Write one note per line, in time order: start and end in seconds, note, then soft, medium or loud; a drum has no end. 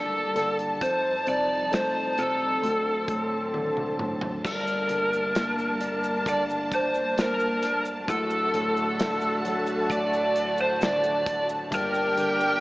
0.00 0.77 G2 medium
0.00 0.35 D3 medium
0.00 2.59 G3 medium
0.00 0.77 A#3 medium
0.00 0.83 A#3 medium
0.00 0.78 D4 medium
0.00 0.78 D4 soft
0.00 0.55 A4 medium
0.00 4.41 A5 medium
0.35 0.80 D3 medium
0.35 snare soft
0.35 closed hi-hat medium
0.59 closed hi-hat soft
0.81 2.59 F2 medium
0.81 2.61 F2 medium
0.81 2.61 F3 medium
0.81 2.61 D#4 medium
0.81 1.24 C5 medium
0.81 kick medium
0.81 closed hi-hat medium
1.27 2.16 C3 soft
1.27 1.74 D5 medium
1.27 closed hi-hat medium
1.72 2.60 A3 medium
1.72 2.20 C5 medium
1.72 snare loud
1.72 closed hi-hat medium
2.18 2.62 C3 medium
2.18 3.96 A4 medium
2.18 closed hi-hat medium
2.62 4.40 D2 medium
2.62 4.43 D2 medium
2.62 4.43 D3 medium
2.62 4.43 F#3 medium
2.62 4.42 C4 medium
2.62 closed hi-hat medium
3.08 3.98 A2 medium
3.08 kick medium
3.08 closed hi-hat medium
3.54 4.42 D3 medium
3.54 high tom soft
3.77 mid tom medium
3.99 4.44 A2 soft
3.99 mid tom medium
4.21 floor tom medium
4.44 8.04 G1 medium
4.44 8.04 G2 medium
4.44 8.04 G3 medium
4.44 8.05 A#3 medium
4.44 8.04 D4 medium
4.44 6.33 A#4 medium
4.44 8.04 A5 medium
4.44 kick medium
4.44 crash medium
4.44 shaker medium
4.67 shaker medium
4.89 6.25 D3 soft
4.89 closed hi-hat medium
5.13 shaker soft
5.35 7.13 A#3 medium
5.35 snare loud
5.35 closed hi-hat medium
5.35 shaker medium
5.59 shaker soft
5.81 7.59 D4 medium
5.81 closed hi-hat medium
5.81 shaker soft
6.04 shaker medium
6.26 8.04 D3 soft
6.26 6.41 D5 loud
6.26 kick medium
6.26 closed hi-hat medium
6.26 shaker medium
6.50 shaker soft
6.72 7.20 C5 medium
6.72 kick loud
6.72 closed hi-hat medium
6.72 shaker soft
6.94 shaker soft
7.17 8.05 A#3 soft
7.17 7.83 A#4 medium
7.17 snare loud
7.17 closed hi-hat medium
7.17 shaker medium
7.40 shaker soft
7.62 snare soft
7.62 closed hi-hat medium
7.62 shaker soft
7.85 shaker medium
8.07 11.67 D1 medium
8.07 11.68 D2 medium
8.07 11.68 D3 medium
8.07 11.68 A3 medium
8.07 11.68 F#4 medium
8.07 9.96 A4 medium
8.07 12.60 A5 medium
8.07 kick medium
8.07 closed hi-hat medium
8.07 shaker medium
8.30 shaker soft
8.54 9.88 A2 soft
8.54 closed hi-hat medium
8.77 shaker soft
8.99 10.77 D3 medium
8.99 snare loud
8.99 closed hi-hat medium
8.99 shaker medium
9.21 shaker soft
9.45 11.23 F#3 medium
9.45 closed hi-hat medium
9.45 shaker soft
9.67 shaker medium
9.90 11.68 A2 medium
9.90 10.61 D5 loud
9.90 kick medium
9.90 closed hi-hat medium
9.90 shaker medium
10.13 shaker soft
10.36 closed hi-hat medium
10.36 shaker soft
10.58 10.83 C5 medium
10.58 shaker soft
10.81 11.69 D3 soft
10.81 11.46 D5 loud
10.81 snare loud
10.81 closed hi-hat medium
10.81 shaker medium
11.03 shaker soft
11.26 kick loud
11.26 closed hi-hat medium
11.26 shaker soft
11.49 shaker medium
11.71 12.60 G1 medium
11.71 12.60 G2 medium
11.71 12.60 G3 medium
11.71 12.60 A#3 medium
11.71 12.60 D4 medium
11.71 12.60 G4 medium
11.71 12.60 G5 loud
11.71 kick medium
11.71 closed hi-hat medium
11.71 shaker medium
11.75 12.60 A#4 loud
11.94 shaker soft
12.17 12.60 D3 soft
12.17 closed hi-hat medium
12.41 shaker soft